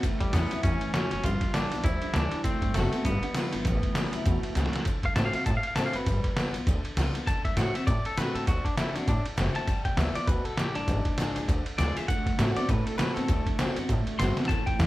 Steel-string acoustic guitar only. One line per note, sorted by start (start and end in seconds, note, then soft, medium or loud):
0.04 0.62 A2 medium
0.34 0.51 E3 medium
0.34 0.52 G3 medium
0.34 0.52 C#4 medium
0.34 0.51 E4 loud
0.52 0.65 C#4 soft
0.52 0.64 E4 medium
0.65 0.94 E3 medium
0.95 1.24 F#3 medium
1.26 1.54 G3 medium
1.55 1.72 G3 medium
1.55 1.73 B3 medium
1.55 1.72 F4 loud
1.73 1.86 B3 medium
1.73 1.85 F4 medium
1.86 2.14 F3 medium
2.16 2.44 E3 loud
2.45 2.74 D3 medium
2.75 2.92 D3 medium
2.75 2.93 A3 medium
2.75 2.93 C4 medium
2.75 2.93 F#4 medium
2.94 3.06 C4 soft
2.94 3.05 F#4 medium
3.06 3.33 G3 loud
3.35 3.52 G3 medium
3.35 3.53 B3 medium
3.35 3.52 F4 loud
3.53 3.66 B3 soft
3.53 3.65 F4 medium
3.67 4.24 A2 medium
3.96 4.13 E3 medium
3.96 4.13 G3 medium
3.96 4.14 C#4 loud
3.96 4.12 E4 loud
4.14 4.27 C#4 soft
4.14 4.26 E4 medium
4.26 4.55 B2 medium
4.57 4.85 C#3 medium
4.87 5.15 D3 medium
5.16 5.33 D3 medium
5.16 5.34 A3 medium
5.16 5.34 C4 medium
5.16 5.33 F#4 medium
5.35 5.47 C4 soft
5.35 5.46 F#4 medium
5.47 6.04 A2 medium
5.77 5.94 D3 medium
5.77 5.94 A3 medium
5.77 5.94 C4 medium
5.77 5.93 F#4 loud
5.95 6.07 C4 medium
5.95 6.06 F#4 medium
6.08 6.37 G3 medium
6.38 6.54 G3 medium
6.38 6.55 B3 medium
6.38 6.54 F4 medium
6.56 6.68 B3 soft
6.56 6.67 F4 medium
6.69 7.25 D3 medium
6.97 7.14 G3 medium
6.97 7.14 B3 medium
6.97 7.14 F4 loud
7.15 7.28 B3 soft
7.15 7.27 F4 medium
7.28 7.56 D3 medium
7.57 7.74 D3 medium
7.57 7.74 A3 medium
7.57 7.75 C4 medium
7.57 7.74 F#4 medium
7.75 7.88 C4 medium
7.75 7.87 F#4 medium
7.88 8.45 A2 medium
8.17 8.46 D3 medium
8.17 8.47 A3 medium
8.17 8.47 C4 loud
8.17 8.47 F#4 loud
8.48 8.76 D3 medium
8.78 8.94 D3 medium
8.78 8.95 A3 loud
8.78 8.95 C4 medium
8.78 8.95 F#4 medium
8.96 9.08 C4 soft
8.96 9.08 F#4 medium
9.09 9.66 A2 medium
9.37 9.66 D3 medium
9.37 9.67 A3 medium
9.37 9.67 C4 medium
9.37 9.67 F#4 medium
9.69 9.97 G3 medium
9.98 10.15 G3 medium
9.98 10.15 B3 medium
9.98 10.14 F4 medium
10.16 10.28 B3 medium
10.16 10.28 F4 medium
10.29 10.57 B2 loud
10.59 10.88 A2 medium
10.89 11.46 G#2 medium
11.19 11.36 G#3 medium
11.19 11.36 B3 medium
11.19 11.37 F4 medium
11.19 11.36 G#4 loud
11.37 11.50 F4 medium
11.37 11.49 G#4 medium
11.49 12.07 D3 medium
11.79 11.96 G#3 medium
11.79 11.96 B3 medium
11.79 11.97 F4 medium
11.79 11.96 G#4 loud
11.97 12.10 F4 medium
11.97 12.09 G#4 medium
12.10 12.38 D3 medium
12.39 12.56 D3 medium
12.39 12.56 A3 medium
12.39 12.56 C4 medium
12.39 12.56 F#4 medium
12.57 12.70 C4 medium
12.57 12.69 F#4 medium
12.69 13.27 A2 medium
12.98 13.16 D3 medium
12.98 13.16 A3 loud
12.98 13.16 C4 medium
12.98 13.15 F#4 medium
13.16 13.29 C4 medium
13.16 13.28 F#4 medium
13.29 13.58 D3 medium
13.59 13.76 D3 medium
13.59 13.76 A3 medium
13.59 13.77 C4 loud
13.59 13.76 F#4 loud
13.77 13.90 C4 soft
13.77 13.89 F#4 medium
13.90 14.48 A2 medium
14.20 14.37 D3 medium
14.20 14.37 A3 medium
14.20 14.37 C4 loud
14.20 14.35 F#4 loud
14.37 14.50 C4 medium
14.37 14.49 F#4 medium
14.51 14.87 A2 medium
14.79 14.87 E3 medium
14.79 14.87 G3 medium
14.79 14.87 C#4 medium
14.79 14.87 E4 medium